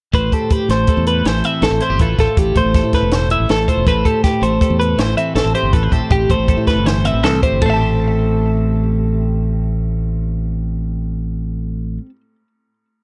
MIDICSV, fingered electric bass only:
0, 0, Header, 1, 2, 480
1, 0, Start_track
1, 0, Key_signature, 0, "minor"
1, 0, Tempo, 373367
1, 174, Time_signature, 5, 2, 24, 8
1, 8333, Tempo, 379267
1, 16627, End_track
2, 0, Start_track
2, 0, Title_t, "Fingered electric bass"
2, 0, Program_c, 0, 33
2, 173, Note_on_c, 0, 33, 85
2, 377, Note_off_c, 0, 33, 0
2, 883, Note_on_c, 0, 33, 73
2, 1091, Note_off_c, 0, 33, 0
2, 1248, Note_on_c, 0, 40, 91
2, 1555, Note_off_c, 0, 40, 0
2, 1602, Note_on_c, 0, 33, 78
2, 1810, Note_off_c, 0, 33, 0
2, 2081, Note_on_c, 0, 33, 100
2, 2188, Note_off_c, 0, 33, 0
2, 2194, Note_on_c, 0, 33, 71
2, 2303, Note_off_c, 0, 33, 0
2, 2438, Note_on_c, 0, 31, 76
2, 2545, Note_off_c, 0, 31, 0
2, 2567, Note_on_c, 0, 33, 94
2, 2772, Note_off_c, 0, 33, 0
2, 2808, Note_on_c, 0, 33, 80
2, 2911, Note_off_c, 0, 33, 0
2, 3050, Note_on_c, 0, 33, 91
2, 3253, Note_off_c, 0, 33, 0
2, 3286, Note_on_c, 0, 33, 85
2, 3389, Note_off_c, 0, 33, 0
2, 3401, Note_on_c, 0, 33, 75
2, 3607, Note_off_c, 0, 33, 0
2, 3644, Note_on_c, 0, 45, 81
2, 3889, Note_on_c, 0, 28, 83
2, 3908, Note_off_c, 0, 45, 0
2, 4294, Note_off_c, 0, 28, 0
2, 4370, Note_on_c, 0, 33, 76
2, 4470, Note_off_c, 0, 33, 0
2, 4498, Note_on_c, 0, 33, 79
2, 4696, Note_off_c, 0, 33, 0
2, 4851, Note_on_c, 0, 28, 74
2, 4950, Note_off_c, 0, 28, 0
2, 4967, Note_on_c, 0, 33, 90
2, 5170, Note_off_c, 0, 33, 0
2, 5679, Note_on_c, 0, 33, 82
2, 5885, Note_off_c, 0, 33, 0
2, 6041, Note_on_c, 0, 40, 90
2, 6348, Note_off_c, 0, 40, 0
2, 6396, Note_on_c, 0, 33, 79
2, 6604, Note_off_c, 0, 33, 0
2, 6881, Note_on_c, 0, 33, 90
2, 6985, Note_off_c, 0, 33, 0
2, 7003, Note_on_c, 0, 33, 82
2, 7107, Note_off_c, 0, 33, 0
2, 7238, Note_on_c, 0, 31, 76
2, 7344, Note_off_c, 0, 31, 0
2, 7369, Note_on_c, 0, 33, 100
2, 7573, Note_off_c, 0, 33, 0
2, 7607, Note_on_c, 0, 33, 82
2, 7711, Note_off_c, 0, 33, 0
2, 7850, Note_on_c, 0, 33, 85
2, 8056, Note_off_c, 0, 33, 0
2, 8093, Note_on_c, 0, 33, 91
2, 8196, Note_off_c, 0, 33, 0
2, 8205, Note_on_c, 0, 33, 69
2, 8413, Note_off_c, 0, 33, 0
2, 8449, Note_on_c, 0, 45, 94
2, 8679, Note_on_c, 0, 31, 81
2, 8697, Note_off_c, 0, 45, 0
2, 9090, Note_off_c, 0, 31, 0
2, 9159, Note_on_c, 0, 33, 75
2, 9281, Note_off_c, 0, 33, 0
2, 9281, Note_on_c, 0, 36, 85
2, 9488, Note_off_c, 0, 36, 0
2, 9643, Note_on_c, 0, 31, 68
2, 9747, Note_off_c, 0, 31, 0
2, 9769, Note_on_c, 0, 33, 86
2, 15281, Note_off_c, 0, 33, 0
2, 16627, End_track
0, 0, End_of_file